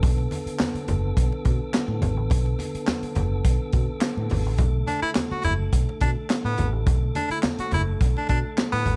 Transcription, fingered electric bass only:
0.03 0.26 B1 loud
0.46 muted fingered electric bass stroke soft
0.74 muted fingered electric bass stroke medium
0.88 1.11 F#1 medium
1.17 1.29 B1 loud
1.46 1.58 B2 medium
1.88 1.99 A2 medium
2.01 2.17 G#1 medium
2.17 2.28 A1 medium
2.31 2.54 B1 loud
2.75 muted fingered electric bass stroke medium
3.03 muted fingered electric bass stroke medium
3.16 3.39 F#1 medium
3.45 3.57 B1 medium
3.73 3.86 B2 loud
4.17 4.28 A2 medium
4.31 4.46 G#1 medium
4.46 4.57 A1 medium
4.59 4.82 B1 loud
5.02 muted fingered electric bass stroke soft
5.31 muted fingered electric bass stroke medium
5.45 5.68 F#1 medium
5.73 5.85 B1 loud
6.01 6.14 B2 medium
6.45 6.56 A2 medium
6.58 6.72 G#1 medium
6.72 6.84 A1 medium
6.87 7.10 B1 loud
7.30 muted fingered electric bass stroke soft
7.59 muted fingered electric bass stroke medium
7.73 7.95 F#1 medium
8.01 8.13 B1 medium
8.30 8.42 B2 loud
8.73 8.84 A2 loud
8.86 8.96 G#1 loud

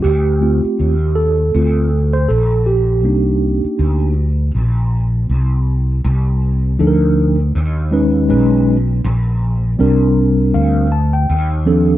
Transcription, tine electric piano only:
0.02 1.19 G4 medium
0.41 0.94 A3 medium
0.41 0.94 C4 soft
0.41 0.95 F4 medium
1.15 2.16 A4 medium
1.55 1.88 A3 soft
1.55 1.89 C4 soft
1.55 1.89 F4 medium
2.13 2.30 C5 loud
2.29 2.68 A4 medium
2.66 4.13 G4 medium
3.04 4.13 A#3 medium
3.04 4.13 D4 soft
3.04 4.13 D#4 medium
6.79 7.34 F3 medium
6.79 7.35 D4 medium
6.79 7.35 D#4 medium
6.79 6.88 A4 medium
6.87 7.39 A#4 medium
7.91 8.28 G#3 medium
7.91 8.28 C#4 medium
7.91 8.28 D#4 medium
7.91 8.29 B4 medium
8.29 8.75 G#3 medium
8.29 8.76 C#4 medium
8.29 8.76 D#4 medium
8.29 8.76 B4 medium
9.79 10.85 G3 medium
9.79 10.86 C4 medium
9.79 10.86 D4 medium
9.79 10.86 A#4 medium
10.54 10.90 F5 medium
10.92 11.13 A5 medium
11.13 11.49 G5 medium
11.66 11.98 F3 medium
11.66 11.98 C4 medium
11.66 11.98 D4 medium
11.66 11.98 A4 medium

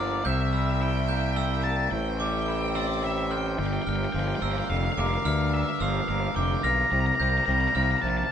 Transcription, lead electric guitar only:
0.00 0.26 D5 medium
0.26 0.83 E5 medium
0.82 1.36 G5 medium
1.37 1.63 G5 medium
1.64 1.91 A5 medium
1.91 2.99 G5 medium
2.76 3.04 D5 medium
3.04 3.32 E5 medium
3.31 3.57 G5 medium
3.58 3.66 G5 medium
3.66 3.73 G5 medium
3.73 3.81 G5 medium
3.82 3.88 G5 medium
3.89 3.95 G5 medium
3.96 4.03 G5 medium
4.04 4.12 G5 medium
4.12 4.19 G5 medium
4.19 4.27 G5 medium
4.28 4.35 G5 medium
4.35 4.42 G5 medium
4.42 4.50 G5 medium
4.51 4.58 G5 medium
4.58 4.66 G5 soft
4.70 4.76 F5 medium
4.77 4.84 F5 medium
4.85 4.92 F5 medium
4.92 4.99 F5 medium
5.00 5.07 F5 medium
5.07 5.14 F5 medium
5.14 5.21 F5 medium
5.25 5.54 F5 medium
5.53 5.82 E5 medium
5.81 6.07 F5 medium
6.08 6.36 F5 medium
6.36 6.65 G5 medium
6.63 6.90 A#5 medium
6.91 6.99 A#5 medium
7.00 7.06 A#5 medium
7.06 7.14 A#5 medium
7.15 7.22 A#5 medium
7.23 7.29 A#5 medium
7.30 7.37 A#5 medium
7.38 7.45 A#5 medium
7.46 7.52 A#5 medium
7.52 7.60 A#5 medium
7.61 7.67 A#5 medium
7.68 7.75 A#5 medium
7.76 7.83 A#5 medium
7.83 7.91 A#5 medium
7.91 7.97 A#5 medium
7.98 8.08 A5 medium
7.98 8.01 A#5 medium
8.08 8.16 A5 medium
8.17 8.24 A5 medium
8.24 8.31 A5 medium

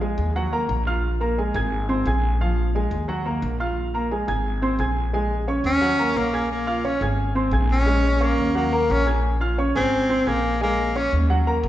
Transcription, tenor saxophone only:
5.66 6.19 C#4 loud
6.18 6.51 A#3 medium
6.51 6.87 A#3 medium
6.85 7.02 C#4 medium
7.71 8.24 C#4 loud
8.23 8.56 A#3 medium
8.57 8.93 A#3 medium
8.91 9.08 C#4 loud
9.76 10.29 C4 medium
10.28 10.61 A#3 medium
10.63 10.99 A#3 medium
10.97 11.13 C#4 medium

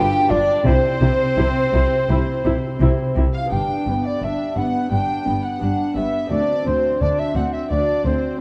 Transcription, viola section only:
0.29 0.37 F4 medium
0.66 0.74 E4 medium
1.02 1.10 E4 medium
1.37 1.45 E4 medium
1.74 1.82 E4 medium
2.10 2.18 E4 medium
2.46 2.54 E4 medium
2.82 2.90 E4 medium
3.18 3.26 E4 medium
3.52 3.85 D4 soft
3.88 4.22 B3 soft
4.23 4.57 D4 soft
4.58 4.92 B3 soft
4.92 5.24 D4 soft
5.26 5.62 B3 soft
5.62 5.97 D4 soft
5.96 6.31 B3 soft
6.32 6.64 D4 soft
6.67 7.02 C4 soft
7.02 7.36 D4 soft
7.36 7.71 C4 soft
7.71 8.03 D4 soft
8.06 8.40 C4 soft

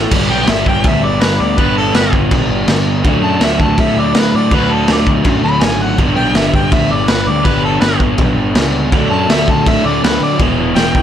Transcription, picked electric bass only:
0.11 0.28 G1 loud
0.29 0.47 B1 medium
0.48 0.66 G1 loud
0.66 0.84 G1 medium
0.84 1.02 D2 loud
1.03 1.21 G1 loud
1.23 1.39 G1 loud
1.40 1.57 D2 medium
1.58 1.93 G1 loud
1.94 2.12 G1 loud
2.13 2.31 G1 loud
2.32 2.49 B1 medium
2.49 2.67 G1 loud
2.68 3.03 G1 medium
3.04 3.21 D2 loud
3.22 3.39 F#2 medium
3.40 3.58 D2 loud
3.60 3.77 D2 medium
3.78 3.96 A2 medium
3.97 4.14 D2 loud
4.15 4.32 D2 medium
4.34 4.50 A2 medium
4.51 4.86 D2 loud
4.89 5.06 D2 loud
5.07 5.24 D2 loud
5.25 5.42 F#2 medium
5.44 5.61 D2 loud
5.62 5.97 G#1 medium
5.98 6.16 G1 loud
6.16 6.34 B1 medium
6.34 6.52 G1 medium
6.53 6.71 G1 medium
6.72 6.89 D2 medium
6.90 7.08 G1 loud
7.08 7.26 G1 medium
7.27 7.45 D2 medium
7.45 7.80 G1 loud
7.81 7.99 G1 medium
8.00 8.18 G1 loud
8.19 8.35 B1 loud
8.36 8.54 G1 loud
8.54 8.90 C#2 loud
8.92 9.10 D2 loud
9.11 9.28 F#2 loud
9.29 9.47 D2 loud
9.48 9.66 D2 loud
9.67 9.84 A2 loud
9.85 10.02 D2 medium
10.03 10.20 D2 medium
10.20 10.38 D2 medium
10.39 10.75 E1 loud
10.76 10.94 E1 medium
10.95 11.03 E1 loud

